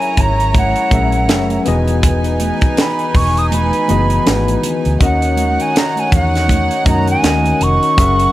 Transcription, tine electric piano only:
0.00 0.90 F#3 medium
0.00 0.91 C#4 medium
0.00 0.92 G#4 medium
0.00 0.93 A#4 medium
0.00 0.94 E5 medium
0.90 1.16 F#3 medium
0.90 1.17 C#4 medium
0.90 1.17 G#4 medium
0.90 1.17 A#4 medium
0.90 1.18 E5 medium
1.28 1.65 F#3 medium
1.28 1.66 C#4 medium
1.28 1.66 G#4 medium
1.28 1.67 A#4 medium
1.28 1.67 E5 medium
1.65 2.86 E3 medium
1.65 2.86 B3 medium
1.65 2.87 F#4 medium
1.65 2.87 G#4 medium
1.65 2.87 D#5 medium
3.88 4.14 E3 medium
3.88 4.14 B3 medium
3.88 4.15 F#4 medium
3.88 4.15 G#4 medium
3.88 4.15 D#5 medium
4.26 4.73 E3 medium
4.26 4.74 B3 medium
4.26 4.74 F#4 medium
4.26 4.74 G#4 medium
4.26 4.75 B4 medium
5.00 5.95 D#3 medium
5.00 5.95 C#4 medium
5.00 5.96 F#4 medium
5.00 5.96 A#4 medium
5.00 5.96 D#5 medium
6.86 7.11 D#3 medium
6.86 7.12 C#4 medium
6.86 7.12 F#4 medium
6.86 7.12 A#4 medium
6.86 7.13 D#5 medium
7.23 7.71 D#3 medium
7.23 7.71 C#4 medium
7.23 7.71 F#4 medium
7.23 7.72 A#4 medium
7.23 7.72 D#5 medium
7.97 8.23 F#3 medium
7.97 8.23 C#4 medium
7.97 8.23 G#4 medium
7.97 8.24 A#4 medium
7.97 8.24 E5 medium

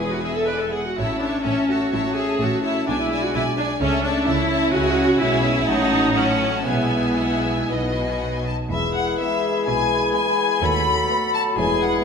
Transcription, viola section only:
0.00 0.11 G#4 medium
0.11 0.23 F#4 medium
0.23 0.35 G#4 medium
0.36 0.48 A4 medium
0.47 0.60 B4 medium
0.61 0.73 A4 soft
0.72 0.85 G#4 soft
0.86 0.98 F#4 soft
0.97 1.22 E4 medium
1.22 1.46 D4 medium
1.45 1.68 C#4 soft
1.69 1.93 F#4 medium
1.94 2.05 E4 medium
2.06 2.17 F#4 medium
2.17 2.40 G#4 medium
2.41 2.64 F#4 medium
2.65 2.88 E4 medium
2.88 2.99 D4 medium
3.00 3.23 E4 medium
3.24 3.35 F#4 medium
3.35 3.43 E4 medium
3.58 3.66 D4 medium
3.81 4.03 C#4 medium
4.04 4.27 D4 medium
4.26 4.73 E4 medium
4.72 5.19 F#4 medium
5.19 5.66 E4 medium
5.67 6.15 D#4 medium
6.16 6.66 C#4 medium
6.66 8.17 B3 medium
9.18 9.54 G#3 soft
9.18 9.54 B3 soft
10.13 10.50 G#3 soft
10.13 10.50 B3 soft
11.08 11.45 A3 soft
11.08 11.45 B3 soft

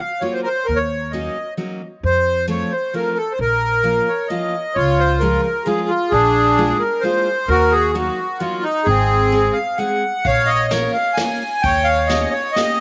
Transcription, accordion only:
0.00 0.23 F5 medium
0.21 0.33 C#5 medium
0.33 0.41 C5 medium
0.43 0.49 A#4 medium
0.43 0.67 C5 medium
0.66 0.78 A#4 medium
0.76 1.12 C#5 medium
1.11 1.54 D#5 medium
2.05 2.46 C5 loud
2.50 2.73 C#5 medium
2.72 2.94 C5 medium
2.95 3.18 A#4 medium
3.17 3.33 A4 medium
3.32 3.39 C5 medium
3.41 4.27 A#4 loud
4.08 4.29 C#5 medium
4.28 4.76 D#5 medium
4.75 5.41 F4 medium
4.75 5.00 C#5 medium
5.00 5.23 C5 medium
5.19 5.68 A#4 medium
5.65 5.90 G#4 medium
5.88 6.13 F4 medium
6.11 6.77 D4 medium
6.11 6.83 G#4 loud
6.79 7.03 A#4 medium
7.01 7.49 C5 medium
7.48 7.91 F#4 medium
7.48 7.73 A#4 loud
7.71 7.95 G#4 loud
7.93 8.41 F#4 medium
8.39 8.64 F4 medium
8.63 8.87 D#4 loud
8.85 9.54 C4 medium
8.85 9.58 G#4 loud
9.53 9.78 F5 medium
9.78 10.27 F#5 medium
10.25 10.67 C#5 medium
10.25 10.50 F5 loud
10.46 10.72 D#5 loud
10.68 10.92 C#5 medium
10.93 11.18 F5 medium
11.14 11.64 G#5 medium
11.62 12.29 C#5 medium
11.62 11.88 G5 loud
11.84 12.10 F5 loud
12.07 12.33 D#5 medium
12.30 12.56 C#5 medium
12.53 12.80 D#5 medium

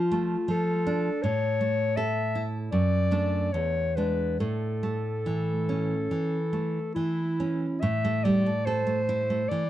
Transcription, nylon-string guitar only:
0.00 0.35 F3 soft
0.12 0.72 A3 soft
0.48 1.08 F3 soft
0.87 1.24 D4 soft
1.24 2.69 A2 medium
1.61 2.20 A3 soft
1.97 2.57 A4 soft
2.35 2.73 E4 soft
2.72 3.51 F#2 soft
3.11 3.49 A3 soft
3.11 3.49 D4 soft
3.54 4.37 E2 soft
3.97 4.36 G#3 soft
3.97 4.36 D4 soft
4.40 6.07 A2 soft
4.83 5.51 A3 soft
5.26 5.94 E3 soft
5.69 6.36 C#4 soft
6.11 6.78 E3 soft
6.53 7.21 A3 soft
6.96 7.65 E3 soft
7.40 7.83 C#4 soft
7.83 9.46 A2 medium
8.05 8.38 A3 medium
8.25 8.46 G3 soft
8.46 8.80 A3 soft
8.67 9.00 A4 soft
8.87 9.20 A3 soft
9.09 9.42 E4 soft
9.30 9.63 A3 soft
9.51 9.70 E3 soft

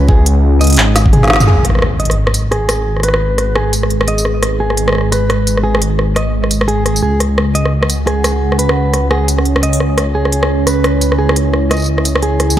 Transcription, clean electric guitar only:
0.09 0.26 G#4 loud
0.61 0.78 D#5 medium
1.13 1.30 G#4 medium
1.48 1.64 G#4 medium
2.00 2.16 D#5 medium
2.51 3.02 G#4 medium
3.04 3.54 B4 medium
3.56 3.73 G#4 medium
4.08 4.25 D#5 medium
4.60 5.11 G#4 medium
5.12 5.63 B4 medium
5.64 5.80 G#4 medium
6.16 6.33 D#5 medium
6.68 6.84 G#4 loud
6.85 7.01 G#4 medium
7.03 7.19 G#4 medium
7.55 7.71 D#5 medium
8.07 8.57 G#4 medium
8.59 9.09 B4 medium
9.11 9.27 G#4 loud
9.63 9.80 D#5 medium
10.15 10.66 G#4 medium
10.67 11.17 B4 medium
11.19 11.35 G#4 loud
11.71 11.88 D#5 medium
12.23 12.56 G#4 medium

